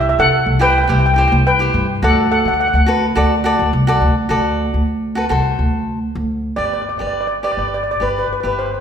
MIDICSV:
0, 0, Header, 1, 4, 480
1, 0, Start_track
1, 0, Key_signature, 1, "major"
1, 0, Tempo, 569260
1, 1711, Time_signature, 4, 2, 24, 8
1, 7424, End_track
2, 0, Start_track
2, 0, Title_t, "Steel pan"
2, 0, Program_c, 0, 114
2, 7, Note_on_c, 0, 76, 62
2, 68, Note_off_c, 0, 76, 0
2, 78, Note_on_c, 0, 76, 73
2, 137, Note_off_c, 0, 76, 0
2, 166, Note_on_c, 0, 69, 84
2, 166, Note_on_c, 0, 78, 109
2, 494, Note_off_c, 0, 69, 0
2, 517, Note_on_c, 0, 79, 109
2, 524, Note_on_c, 0, 71, 86
2, 530, Note_off_c, 0, 78, 0
2, 580, Note_off_c, 0, 71, 0
2, 583, Note_off_c, 0, 79, 0
2, 593, Note_on_c, 0, 79, 78
2, 647, Note_off_c, 0, 79, 0
2, 657, Note_on_c, 0, 79, 77
2, 694, Note_off_c, 0, 79, 0
2, 705, Note_on_c, 0, 79, 67
2, 764, Note_off_c, 0, 79, 0
2, 774, Note_on_c, 0, 79, 73
2, 827, Note_off_c, 0, 79, 0
2, 837, Note_on_c, 0, 79, 64
2, 885, Note_off_c, 0, 79, 0
2, 895, Note_on_c, 0, 79, 79
2, 950, Note_off_c, 0, 79, 0
2, 960, Note_on_c, 0, 79, 72
2, 992, Note_off_c, 0, 79, 0
2, 1002, Note_on_c, 0, 79, 79
2, 1066, Note_off_c, 0, 79, 0
2, 1076, Note_on_c, 0, 79, 72
2, 1145, Note_off_c, 0, 79, 0
2, 1237, Note_on_c, 0, 79, 98
2, 1241, Note_on_c, 0, 71, 75
2, 1680, Note_off_c, 0, 79, 0
2, 1682, Note_off_c, 0, 71, 0
2, 1722, Note_on_c, 0, 78, 93
2, 1723, Note_on_c, 0, 69, 75
2, 1940, Note_off_c, 0, 69, 0
2, 1943, Note_off_c, 0, 78, 0
2, 1953, Note_on_c, 0, 78, 83
2, 1955, Note_on_c, 0, 69, 67
2, 2005, Note_off_c, 0, 78, 0
2, 2013, Note_off_c, 0, 69, 0
2, 2016, Note_on_c, 0, 78, 63
2, 2075, Note_off_c, 0, 78, 0
2, 2091, Note_on_c, 0, 78, 76
2, 2132, Note_off_c, 0, 78, 0
2, 2142, Note_on_c, 0, 78, 64
2, 2185, Note_off_c, 0, 78, 0
2, 2196, Note_on_c, 0, 78, 75
2, 2248, Note_off_c, 0, 78, 0
2, 2258, Note_on_c, 0, 78, 64
2, 2310, Note_off_c, 0, 78, 0
2, 2320, Note_on_c, 0, 78, 69
2, 2381, Note_off_c, 0, 78, 0
2, 5534, Note_on_c, 0, 74, 77
2, 5600, Note_off_c, 0, 74, 0
2, 5610, Note_on_c, 0, 74, 53
2, 5670, Note_off_c, 0, 74, 0
2, 5680, Note_on_c, 0, 74, 59
2, 5738, Note_off_c, 0, 74, 0
2, 5748, Note_on_c, 0, 74, 53
2, 5801, Note_off_c, 0, 74, 0
2, 5811, Note_on_c, 0, 74, 54
2, 5872, Note_off_c, 0, 74, 0
2, 5886, Note_on_c, 0, 74, 46
2, 5941, Note_off_c, 0, 74, 0
2, 5961, Note_on_c, 0, 74, 61
2, 6004, Note_off_c, 0, 74, 0
2, 6014, Note_on_c, 0, 74, 51
2, 6066, Note_off_c, 0, 74, 0
2, 6077, Note_on_c, 0, 74, 62
2, 6123, Note_off_c, 0, 74, 0
2, 6133, Note_on_c, 0, 74, 61
2, 6190, Note_off_c, 0, 74, 0
2, 6275, Note_on_c, 0, 74, 84
2, 6327, Note_off_c, 0, 74, 0
2, 6338, Note_on_c, 0, 74, 61
2, 6389, Note_off_c, 0, 74, 0
2, 6399, Note_on_c, 0, 74, 65
2, 6462, Note_off_c, 0, 74, 0
2, 6475, Note_on_c, 0, 74, 54
2, 6518, Note_off_c, 0, 74, 0
2, 6528, Note_on_c, 0, 74, 66
2, 6592, Note_off_c, 0, 74, 0
2, 6605, Note_on_c, 0, 74, 60
2, 6662, Note_off_c, 0, 74, 0
2, 6672, Note_on_c, 0, 74, 73
2, 6725, Note_off_c, 0, 74, 0
2, 6769, Note_on_c, 0, 71, 71
2, 6812, Note_off_c, 0, 71, 0
2, 6822, Note_on_c, 0, 71, 51
2, 6886, Note_off_c, 0, 71, 0
2, 6904, Note_on_c, 0, 71, 60
2, 6942, Note_off_c, 0, 71, 0
2, 6952, Note_on_c, 0, 71, 52
2, 7012, Note_off_c, 0, 71, 0
2, 7022, Note_on_c, 0, 71, 60
2, 7076, Note_off_c, 0, 71, 0
2, 7086, Note_on_c, 0, 71, 51
2, 7132, Note_off_c, 0, 71, 0
2, 7142, Note_on_c, 0, 71, 60
2, 7202, Note_off_c, 0, 71, 0
2, 7241, Note_on_c, 0, 72, 65
2, 7291, Note_off_c, 0, 72, 0
2, 7301, Note_on_c, 0, 72, 46
2, 7361, Note_off_c, 0, 72, 0
2, 7373, Note_on_c, 0, 72, 49
2, 7424, Note_off_c, 0, 72, 0
2, 7424, End_track
3, 0, Start_track
3, 0, Title_t, "Cavaquinho"
3, 0, Program_c, 1, 24
3, 0, Note_on_c, 1, 64, 70
3, 0, Note_on_c, 1, 67, 65
3, 0, Note_on_c, 1, 72, 76
3, 224, Note_off_c, 1, 64, 0
3, 228, Note_off_c, 1, 67, 0
3, 231, Note_off_c, 1, 72, 0
3, 500, Note_on_c, 1, 64, 76
3, 508, Note_on_c, 1, 67, 69
3, 518, Note_on_c, 1, 72, 85
3, 654, Note_off_c, 1, 64, 0
3, 658, Note_off_c, 1, 67, 0
3, 663, Note_off_c, 1, 72, 0
3, 738, Note_on_c, 1, 64, 79
3, 751, Note_on_c, 1, 67, 65
3, 758, Note_on_c, 1, 72, 78
3, 892, Note_off_c, 1, 64, 0
3, 899, Note_off_c, 1, 67, 0
3, 903, Note_off_c, 1, 72, 0
3, 977, Note_on_c, 1, 64, 74
3, 993, Note_on_c, 1, 67, 67
3, 998, Note_on_c, 1, 72, 79
3, 1202, Note_off_c, 1, 64, 0
3, 1209, Note_off_c, 1, 67, 0
3, 1212, Note_off_c, 1, 72, 0
3, 1342, Note_on_c, 1, 64, 74
3, 1349, Note_on_c, 1, 67, 71
3, 1363, Note_on_c, 1, 72, 80
3, 1563, Note_off_c, 1, 64, 0
3, 1567, Note_off_c, 1, 67, 0
3, 1574, Note_off_c, 1, 72, 0
3, 1706, Note_on_c, 1, 66, 70
3, 1714, Note_on_c, 1, 69, 65
3, 1722, Note_on_c, 1, 74, 76
3, 2140, Note_off_c, 1, 66, 0
3, 2144, Note_off_c, 1, 69, 0
3, 2148, Note_off_c, 1, 74, 0
3, 2415, Note_on_c, 1, 66, 72
3, 2425, Note_on_c, 1, 69, 71
3, 2431, Note_on_c, 1, 71, 83
3, 2568, Note_off_c, 1, 66, 0
3, 2573, Note_off_c, 1, 69, 0
3, 2576, Note_off_c, 1, 71, 0
3, 2660, Note_on_c, 1, 66, 85
3, 2668, Note_on_c, 1, 69, 76
3, 2673, Note_on_c, 1, 74, 95
3, 2810, Note_off_c, 1, 66, 0
3, 2814, Note_off_c, 1, 69, 0
3, 2816, Note_off_c, 1, 74, 0
3, 2900, Note_on_c, 1, 66, 81
3, 2911, Note_on_c, 1, 69, 79
3, 2916, Note_on_c, 1, 74, 94
3, 3119, Note_off_c, 1, 66, 0
3, 3125, Note_off_c, 1, 69, 0
3, 3127, Note_off_c, 1, 74, 0
3, 3264, Note_on_c, 1, 66, 90
3, 3274, Note_on_c, 1, 69, 84
3, 3281, Note_on_c, 1, 74, 97
3, 3482, Note_off_c, 1, 66, 0
3, 3487, Note_off_c, 1, 69, 0
3, 3490, Note_off_c, 1, 74, 0
3, 3617, Note_on_c, 1, 66, 77
3, 3628, Note_on_c, 1, 69, 74
3, 3634, Note_on_c, 1, 74, 85
3, 4054, Note_off_c, 1, 66, 0
3, 4060, Note_off_c, 1, 69, 0
3, 4063, Note_off_c, 1, 74, 0
3, 4345, Note_on_c, 1, 66, 79
3, 4357, Note_on_c, 1, 69, 66
3, 4364, Note_on_c, 1, 71, 78
3, 4419, Note_off_c, 1, 66, 0
3, 4425, Note_off_c, 1, 69, 0
3, 4427, Note_off_c, 1, 71, 0
3, 4462, Note_on_c, 1, 66, 77
3, 4470, Note_on_c, 1, 69, 75
3, 4482, Note_on_c, 1, 72, 87
3, 5039, Note_off_c, 1, 66, 0
3, 5043, Note_off_c, 1, 69, 0
3, 5049, Note_off_c, 1, 72, 0
3, 5535, Note_on_c, 1, 67, 58
3, 5541, Note_on_c, 1, 71, 53
3, 5550, Note_on_c, 1, 74, 61
3, 5758, Note_off_c, 1, 67, 0
3, 5761, Note_off_c, 1, 71, 0
3, 5766, Note_off_c, 1, 74, 0
3, 5894, Note_on_c, 1, 67, 58
3, 5904, Note_on_c, 1, 71, 54
3, 5913, Note_on_c, 1, 74, 59
3, 6119, Note_off_c, 1, 67, 0
3, 6124, Note_off_c, 1, 71, 0
3, 6128, Note_off_c, 1, 74, 0
3, 6264, Note_on_c, 1, 67, 58
3, 6273, Note_on_c, 1, 71, 55
3, 6277, Note_on_c, 1, 74, 62
3, 6557, Note_off_c, 1, 67, 0
3, 6562, Note_off_c, 1, 71, 0
3, 6564, Note_off_c, 1, 74, 0
3, 6744, Note_on_c, 1, 67, 58
3, 6755, Note_on_c, 1, 71, 51
3, 6760, Note_on_c, 1, 74, 62
3, 6966, Note_off_c, 1, 67, 0
3, 6971, Note_off_c, 1, 71, 0
3, 6974, Note_off_c, 1, 74, 0
3, 7111, Note_on_c, 1, 67, 54
3, 7119, Note_on_c, 1, 71, 52
3, 7123, Note_on_c, 1, 76, 63
3, 7330, Note_off_c, 1, 67, 0
3, 7334, Note_off_c, 1, 71, 0
3, 7337, Note_off_c, 1, 76, 0
3, 7424, End_track
4, 0, Start_track
4, 0, Title_t, "Upright bass"
4, 0, Program_c, 2, 32
4, 0, Note_on_c, 2, 36, 85
4, 86, Note_off_c, 2, 36, 0
4, 157, Note_on_c, 2, 48, 87
4, 349, Note_off_c, 2, 48, 0
4, 390, Note_on_c, 2, 36, 82
4, 676, Note_off_c, 2, 36, 0
4, 753, Note_on_c, 2, 36, 97
4, 1041, Note_off_c, 2, 36, 0
4, 1113, Note_on_c, 2, 36, 97
4, 1397, Note_off_c, 2, 36, 0
4, 1467, Note_on_c, 2, 43, 93
4, 1659, Note_off_c, 2, 43, 0
4, 1707, Note_on_c, 2, 38, 97
4, 1996, Note_off_c, 2, 38, 0
4, 2068, Note_on_c, 2, 50, 85
4, 2260, Note_off_c, 2, 50, 0
4, 2305, Note_on_c, 2, 38, 83
4, 2591, Note_off_c, 2, 38, 0
4, 2667, Note_on_c, 2, 38, 95
4, 2955, Note_off_c, 2, 38, 0
4, 3029, Note_on_c, 2, 38, 88
4, 3122, Note_off_c, 2, 38, 0
4, 3146, Note_on_c, 2, 36, 91
4, 3362, Note_off_c, 2, 36, 0
4, 3384, Note_on_c, 2, 38, 83
4, 3600, Note_off_c, 2, 38, 0
4, 3627, Note_on_c, 2, 38, 89
4, 3914, Note_off_c, 2, 38, 0
4, 3995, Note_on_c, 2, 38, 77
4, 4374, Note_off_c, 2, 38, 0
4, 4471, Note_on_c, 2, 36, 82
4, 4661, Note_off_c, 2, 36, 0
4, 4711, Note_on_c, 2, 38, 75
4, 5092, Note_off_c, 2, 38, 0
4, 5189, Note_on_c, 2, 38, 88
4, 5474, Note_off_c, 2, 38, 0
4, 5546, Note_on_c, 2, 31, 67
4, 5836, Note_off_c, 2, 31, 0
4, 5912, Note_on_c, 2, 31, 64
4, 6295, Note_off_c, 2, 31, 0
4, 6385, Note_on_c, 2, 31, 65
4, 6673, Note_off_c, 2, 31, 0
4, 6754, Note_on_c, 2, 31, 72
4, 6945, Note_off_c, 2, 31, 0
4, 7114, Note_on_c, 2, 31, 70
4, 7401, Note_off_c, 2, 31, 0
4, 7424, End_track
0, 0, End_of_file